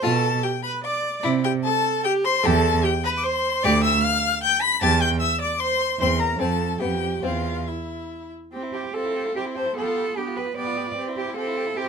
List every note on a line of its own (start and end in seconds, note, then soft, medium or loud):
0.03 0.37 B2 medium
0.03 0.22 F4 medium
0.03 0.43 A4 loud
0.03 0.44 A5 loud
0.43 0.52 G4 medium
0.43 0.63 G5 medium
0.63 0.83 B4 loud
0.63 0.71 B5 loud
0.84 1.24 D5 loud
0.84 1.23 D6 loud
1.23 1.58 C3 loud
1.23 1.42 E4 medium
1.44 1.52 G4 medium
1.44 1.52 G5 loud
1.64 2.06 A4 loud
1.64 2.04 A5 loud
2.04 2.26 G4 loud
2.04 2.12 G5 loud
2.25 2.45 C5 loud
2.25 2.47 C6 loud
2.43 2.78 E2 loud
2.43 2.63 G4 medium
2.43 2.83 A4 loud
2.43 2.86 A5 loud
2.84 2.92 G4 medium
2.84 3.04 G5 loud
3.04 3.25 B4 loud
3.04 3.10 B5 loud
3.18 3.27 D6 medium
3.23 3.65 C5 loud
3.23 3.66 C6 loud
3.63 3.97 D2 loud
3.63 3.82 G4 loud
3.63 3.83 D5 loud
3.63 3.83 D6 loud
3.84 4.05 E5 loud
3.84 4.02 E6 loud
4.03 4.43 F5 loud
4.03 4.42 F6 loud
4.43 4.64 G5 loud
4.43 4.61 G6 loud
4.62 4.82 B5 loud
4.62 4.81 B6 loud
4.81 5.14 E2 loud
4.81 5.00 G4 medium
4.81 5.03 A5 loud
4.81 5.01 A6 loud
5.01 5.20 G5 loud
5.01 5.09 G6 loud
5.21 5.40 E5 loud
5.21 5.40 E6 loud
5.41 5.61 D5 loud
5.41 5.62 D6 loud
5.60 5.99 C5 loud
5.60 6.00 C6 loud
6.00 6.33 E2 medium
6.00 6.19 C4 medium
6.00 6.08 C5 loud
6.00 6.22 C6 loud
6.19 6.41 A#4 medium
6.19 6.40 A#5 loud
6.39 6.74 F2 medium
6.39 6.58 C4 medium
6.39 6.82 A4 medium
6.39 6.80 A5 medium
6.80 7.16 F2 medium
6.80 7.00 B3 medium
6.80 7.25 G4 medium
6.80 7.23 G5 medium
7.23 7.60 E2 medium
7.23 7.44 C4 medium
7.23 7.69 F4 medium
7.23 7.69 F5 medium
7.68 8.32 E4 medium
7.68 8.32 E5 medium
8.53 8.89 C4 medium
8.53 8.64 G4 medium
8.63 8.75 E4 soft
8.73 8.82 E4 medium
8.73 8.96 G4 medium
8.73 8.85 G4 soft
8.83 8.93 E4 soft
8.93 9.30 C4 medium
8.93 9.39 F4 medium
8.93 9.06 G4 medium
8.93 9.35 A4 medium
9.05 9.17 E4 medium
9.15 9.27 G4 medium
9.25 9.34 E4 soft
9.35 9.71 C4 medium
9.35 9.58 E4 medium
9.35 9.47 G4 medium
9.35 9.44 G4 medium
9.46 9.56 E4 medium
9.55 9.67 G4 medium
9.55 9.76 A4 medium
9.55 9.76 C5 medium
9.65 9.75 E4 medium
9.75 10.11 B3 medium
9.75 10.16 F4 medium
9.75 9.88 G4 medium
9.75 10.19 A4 medium
9.87 9.98 F4 soft
9.96 10.07 G4 soft
10.06 10.16 F4 medium
10.15 10.51 B3 medium
10.15 10.25 D4 medium
10.15 10.29 G4 soft
10.15 10.38 G4 medium
10.27 10.39 F4 medium
10.37 10.48 G4 medium
10.37 10.45 G4 medium
10.37 10.57 B4 medium
10.46 10.54 F4 medium
10.55 10.92 B3 medium
10.55 10.68 G4 medium
10.55 10.96 B4 medium
10.55 10.96 D5 medium
10.66 10.78 F4 soft
10.77 10.88 G4 medium
10.86 10.96 F4 medium
10.96 11.32 C4 medium
10.96 11.10 G4 medium
11.08 11.19 E4 soft
11.16 11.37 E4 medium
11.16 11.35 G4 medium
11.16 11.29 G4 medium
11.27 11.37 E4 medium
11.36 11.71 C4 medium
11.36 11.77 F4 medium
11.36 11.49 G4 medium
11.36 11.78 A4 medium
11.47 11.58 E4 medium
11.57 11.68 G4 medium
11.66 11.76 E4 medium
11.76 11.89 C4 medium
11.76 11.89 E4 medium
11.76 11.87 G4 medium
11.76 11.89 G4 medium